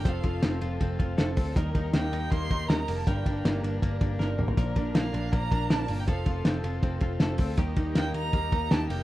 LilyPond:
<<
  \new Staff \with { instrumentName = "Violin" } { \time 4/4 \key f \mixolydian \tempo 4 = 160 f''4 r2. | r4 g''4 c'''4 bes''8. a''16 | g''4 r2. | r4 f''4 bes''4 a''8. g''16 |
f''4 r2. | r4 g''8 bes''4. a''8 g''8 | }
  \new Staff \with { instrumentName = "Transistor combo organ" } { \time 4/4 \key f \mixolydian <a c' f' a'>1 | <bes ees' g' bes'>1 | <bes d' g' bes'>1 | <bes d' f' bes'>1 |
<a c' f' a'>1 | <bes ees' g' bes'>1 | }
  \new Staff \with { instrumentName = "Clean electric guitar" } { \time 4/4 \key f \mixolydian <f a'>8 f'8 c'8 f'8 c'8 f'8 a'8 c'8 | <ees bes'>8 ees'8 bes8 ees'8 bes8 ees'8 bes'8 bes8 | <g, bes'>8 d'8 bes8 d'8 bes8 d'8 bes'8 bes8 | <bes, bes'>8 d'8 bes8 d'8 bes8 d'8 bes'8 bes8 |
<f a'>8 f'8 c'8 f'8 c'8 f'8 a'8 c'8 | <ees g'>8 ees'8 bes8 ees'8 bes8 ees'8 g'8 bes8 | }
  \new Staff \with { instrumentName = "Steel-string acoustic guitar" } { \time 4/4 \key f \mixolydian <f c' f' a'>8 <f c' f' a'>4 <c' f' a'>8 <f c' f' a'>8 <c' f' a'>8 <f c' f' a'>8 <c' f' a'>8 | <ees g bes ees' bes'>8 <ees g bes ees' bes'>4 <bes ees' bes'>8 <g bes ees' bes'>8 <bes ees' bes'>8 <ees g bes ees' bes'>8 <bes ees' bes'>8 | <g, d g bes d' bes'>8 <g, d g bes d' bes'>4 <g bes d' bes'>8 <g bes d' bes'>8 <g bes d' bes'>8 <g, d g bes d' bes'>8 <g bes d' bes'>8 | <bes, d f bes d' bes'>8 <bes, d f bes d' bes'>4 <f bes d' bes'>8 <f bes d' bes'>8 <f bes d' bes'>8 <bes, d f bes d' bes'>8 <f bes d' bes'>8 |
<f c' f' a'>8 <f c' f' a'>4 <c' f' a'>8 <f c' f' a'>8 <c' f' a'>8 <f c' f' a'>8 <c' f' a'>8 | <ees g bes ees' g'>8 <ees g bes ees' g'>4 <ees' g'>8 <g bes ees' g'>8 <bes ees' g'>8 <ees g bes ees' g'>8 <bes ees' g'>8 | }
  \new Staff \with { instrumentName = "Picked electric bass" } { \clef bass \time 4/4 \key f \mixolydian f,,8 f,,8 f,,8 f,,8 f,,8 f,,8 f,,8 d,8 | ees,8 ees,8 ees,8 ees,8 ees,8 ees,8 ees,8 f,,8 | g,,8 g,,8 g,,8 g,,8 g,,8 g,,8 g,,8 a,,8 | bes,,8 bes,,8 bes,,8 bes,,8 bes,,8 bes,,8 bes,,8 g,,8 |
f,,8 f,,8 f,,8 f,,8 f,,8 f,,8 f,,8 d,8 | ees,8 ees,8 ees,8 ees,8 ees,8 ees,8 ees,8 f,,8 | }
  \new DrumStaff \with { instrumentName = "Drums" } \drummode { \time 4/4 <hhp bd cymr>8 <bd cymr>8 <cymr sn>8 cymr8 <bd cymr>8 <bd cymr>8 <cymr sn>8 <hho bd cymr>8 | <hhp bd cymr>8 <bd cymr>8 <cymr sn>8 cymr8 <bd cymr>8 <bd cymr>8 <cymr sn>8 <hho cymr>8 | <hhp bd cymr>8 <bd cymr>8 <cymr sn>8 cymr8 <bd cymr>8 <bd cymr>8 sn8 toml16 tomfh16 | <hhp bd cymr>8 <bd cymr>8 <cymr sn>8 cymr8 <bd cymr>8 <bd cymr>8 <cymr sn>8 <hho cymr>8 |
<hhp bd cymr>8 <bd cymr>8 <cymr sn>8 cymr8 <bd cymr>8 <bd cymr>8 <cymr sn>8 <hho bd cymr>8 | <hhp bd cymr>8 <bd cymr>8 <cymr sn>8 cymr8 <bd cymr>8 <bd cymr>8 <cymr sn>8 <hho cymr>8 | }
>>